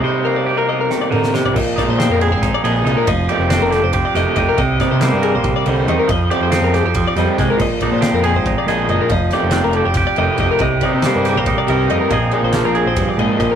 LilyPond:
<<
  \new Staff \with { instrumentName = "Clean electric guitar" } { \time 7/8 \key bes \mixolydian \tempo 4 = 139 c''8 bes'16 d''8 bes'16 ees''16 bes'8 d''16 bes'8 c''16 d''16 | ees''8 d''16 c''8 bes'16 aes'16 c''8 d''16 ees''8 ees''16 bes'16 | ees''8 d''16 c''8 bes'16 a'16 c''8 d''16 ees''8 ees''16 bes'16 | ees''8 d''16 c''8 bes'16 aes'16 c''8 d''16 ees''8 ees''16 bes'16 |
ees''8 d''16 c''8 bes'16 aes'16 c''8 d''16 ees''8 ees''16 bes'16 | ees''8 d''16 c''8 bes'16 aes'16 c''8 d''16 ees''8 ees''16 bes'16 | ees''8 d''16 c''8 bes'16 a'16 c''8 d''16 ees''8 ees''16 bes'16 | ees''8 d''16 c''8 bes'16 aes'16 c''8 d''16 ees''8 ees''16 bes'16 |
ees''8 d''16 c''8 bes'16 aes'16 c''8 d''16 ees''8 ees''16 bes'16 | }
  \new Staff \with { instrumentName = "Clean electric guitar" } { \time 7/8 \key bes \mixolydian << { g'8 bes8 g'16 bes'2~ bes'16 | r8 ees'8 c'8 aes'8 ees'8 aes'8 ees'8 | r8 g'8 d'8 g'8 g'8 g'8 g'8~ | g'8 ees'8 bes8 bes'2 |
r8 g'8 ees'8 g'2 | r8 ees'8 c'8 aes'8 ees'8 aes'8 ees'8 | r8 g'8 d'8 g'8 g'8 g'8 g'8~ | g'8 ees'8 bes8 g'16 bes'16 ees'8 bes'8 ees'8 |
<f c' ees' aes'>8 ees'8 bes16 c'16 aes'2 | } \\ { c2 ees8 d8 c8 | bes,4 f4. bes,4 | f4 c'4. c4 | c4 g4 c8 d8 ees8 |
f4 c'4 f8 g8 aes8 | bes,4 f4. bes,4 | f4 c'4. c4 | c4 g4. g,4 |
bes,4 f4 g,8 aes,8 bes,8 | } >> }
  \new Staff \with { instrumentName = "Overdriven electric guitar" } { \clef bass \time 7/8 \key bes \mixolydian <c g c' ees'>2~ <c g c' ees'>8 <c g c' ees'>8 <c g c' ees'>8 | r8 <bes, f aes d'>8 <bes, f aes d'>8 r4 <bes, f aes d'>8 <bes, f aes d'>8 | r8 <c ees a ees'>8 <c ees a ees'>8 r4 <c ees a ees'>8 <c ees a ees'>8 | r8 <c g c' ees'>8 <c g c' ees'>8 r4 <c g c' ees'>8 <c g c' ees'>8 |
r8 <c f aes c'>8 <c f aes c'>8 r4 <c f aes c'>8 <c f aes c'>8 | r8 <bes, f aes d'>8 <bes, f aes d'>8 r4 <bes, f aes d'>8 <bes, f aes d'>8 | r8 <c ees a ees'>8 <c ees a ees'>8 r4 <c ees a ees'>8 <c ees a ees'>8 | r8 <g c' ees' g'>8 <g c' ees' g'>8 r4 <g c' ees' g'>8 <g c' ees' g'>8 |
r8 <f bes d' aes'>8 <f bes d' aes'>8 r4 <f bes d' aes'>8 <f bes d' aes'>8 | }
  \new Staff \with { instrumentName = "Picked electric bass" } { \clef bass \time 7/8 \key bes \mixolydian r2. r8 | bes,,8 r16 bes,8 f,8 aes,,8 r16 bes,,8 c,16 r16 | f,,8 r16 f,,8 f,,8 f,,8 r16 f,,16 r16 f,,16 r16 | c,8 r16 c8 g,8 bes,,8 r16 c,8 e,16 r16 |
f,8 r16 f,8 f,8 f,8 r16 f,16 r16 c,16 r16 | bes,,8 r16 bes,8 f,8 aes,,8 r16 bes,,8 fis,,16 r16 | f,,8 r16 f,,8 f,,8 f,,8 r16 f,,16 r16 f,,16 r16 | c,8 r16 c8 g,8 bes,,8 r16 c,8 f,16 r16 |
bes,,8 r16 bes,,8 bes,,8 bes,,8 r16 bes,,16 r16 bes,,16 r16 | }
  \new DrumStaff \with { instrumentName = "Drums" } \drummode { \time 7/8 r4 r4 sn8 toml16 sn16 sn16 tomfh16 | <cymc bd>8 <bd cymr sn>8 <cymr sn>8 cymr8 <bd cymr sn>8 cymr8 cymr8 | <bd cymr>8 cymr8 <cymr sn>8 <cymr sn>8 <bd cymr>8 <cymr sn>8 <bd cymr>8 | <bd cymr>8 <bd cymr sn>8 <cymr sn>8 cymr8 <bd cymr>8 cymr8 cymr8 |
<bd cymr>8 cymr8 <cymr sn>8 <cymr sn>8 <bd cymr>8 <cymr sn>8 <bd cymr sn>8 | <cymc bd>8 <bd cymr>8 <cymr sn>8 cymr8 <bd cymr>8 <cymr sn>8 cymr8 | <bd cymr>8 <cymr sn>8 <cymr sn>8 cymr8 <bd cymr sn>8 cymr8 <bd cymr>8 | <bd cymr>8 <bd cymr>8 <cymr sn>8 <cymr sn>8 <bd cymr>8 cymr8 cymr8 |
<bd cymr>8 cymr8 <cymr sn>8 cymr8 <bd cymr>8 cymr8 <bd cymr>8 | }
>>